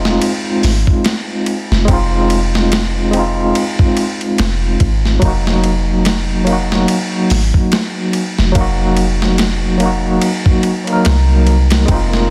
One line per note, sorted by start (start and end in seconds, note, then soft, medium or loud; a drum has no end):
0.00 0.19 F1 medium
0.00 1.85 G#3 medium
0.00 1.88 C4 medium
0.00 1.91 D#4 medium
0.00 1.93 F4 medium
0.05 snare medium
0.22 ride medium
0.63 0.85 G#1 medium
0.63 snare soft
0.63 open hi-hat medium
0.87 kick medium
1.04 snare loud
1.04 ride medium
1.46 ride medium
1.71 1.87 F1 medium
1.71 snare soft
1.85 3.52 F1 medium
1.85 3.07 G#3 medium
1.85 3.09 C4 medium
1.85 kick loud
1.85 ride medium
1.91 3.10 D#4 medium
1.91 3.12 F4 medium
2.30 ride medium
2.55 snare medium
2.72 snare loud
2.72 ride medium
3.11 5.16 G#3 medium
3.11 5.18 C4 medium
3.11 ride medium
3.16 5.19 D#4 medium
3.16 5.20 F4 medium
3.55 ride medium
3.79 kick medium
3.97 ride medium
4.21 ride soft
4.38 4.76 F1 medium
4.38 snare loud
4.38 ride medium
4.80 5.18 G#1 loud
4.80 kick medium
4.80 ride medium
5.05 snare soft
5.19 6.85 F1 medium
5.19 6.41 F#3 medium
5.19 6.43 A#3 medium
5.19 kick loud
5.19 ride medium
5.25 6.44 D#4 medium
5.25 6.45 F#4 medium
5.47 snare medium
5.64 ride medium
6.05 snare loud
6.05 ride medium
6.44 8.50 F#3 medium
6.44 8.51 A#3 medium
6.44 ride medium
6.50 8.52 D#4 medium
6.50 8.54 F#4 medium
6.72 snare medium
6.88 ride medium
7.30 7.52 G#1 medium
7.30 snare soft
7.30 open hi-hat medium
7.54 kick medium
7.72 snare loud
7.72 ride medium
8.13 ride medium
8.38 8.54 F1 medium
8.38 snare soft
8.52 10.19 F1 medium
8.52 9.74 F#3 medium
8.52 9.76 A#3 medium
8.52 kick medium
8.52 ride medium
8.57 9.77 D#4 medium
8.57 9.79 F#4 medium
8.97 ride medium
9.22 snare soft
9.38 snare loud
9.38 ride medium
9.77 10.81 F#3 medium
9.77 10.83 A#3 medium
9.77 ride medium
9.83 10.84 D#4 medium
9.83 10.85 F#4 medium
10.21 ride medium
10.46 kick medium
10.63 ride medium
10.84 11.83 F#3 medium
10.84 11.84 A#3 medium
10.84 ride soft
10.90 11.85 D#4 medium
10.90 11.87 A#4 medium
11.05 11.85 C2 medium
11.05 snare medium
11.05 ride medium
11.47 ride medium
11.70 snare medium
11.70 ride medium
11.85 12.30 F1 medium
11.85 12.30 G#3 medium
11.85 12.30 A#3 medium
11.85 12.30 C4 medium
11.85 12.30 A#4 medium
11.85 kick loud
11.85 ride medium
11.91 12.30 D#4 medium
11.91 12.30 F4 medium
12.13 snare medium